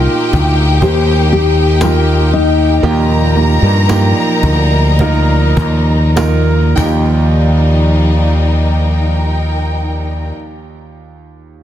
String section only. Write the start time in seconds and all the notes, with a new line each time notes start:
Already playing: A#3 D#4 G4
2.83 F3 G3 D#4
6.78 F3 G3 D#4